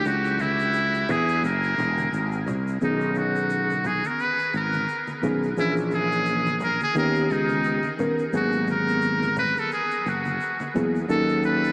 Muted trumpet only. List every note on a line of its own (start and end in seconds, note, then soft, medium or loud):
0.06 0.42 F#4 medium
0.41 1.12 E4 loud
1.11 1.45 G#4 medium
1.45 2.44 A#4 medium
2.84 3.19 D#4 medium
3.17 3.88 F#4 medium
3.86 4.08 G#4 medium
4.07 4.22 A#4 medium
4.21 4.55 B4 loud
4.56 5.20 A#4 medium
5.59 5.74 E4 medium
5.94 6.58 G#4 loud
6.63 6.81 A#4 loud
6.83 6.96 G#4 loud
6.98 7.34 A#4 loud
7.32 8.00 D#4 medium
8.36 8.67 F#4 medium
8.71 9.34 A#4 medium
9.39 9.60 B4 loud
9.59 9.72 A4 medium
9.73 10.10 G#4 medium
10.08 10.76 F#4 medium
11.10 11.42 A4 medium
11.45 11.72 B4 medium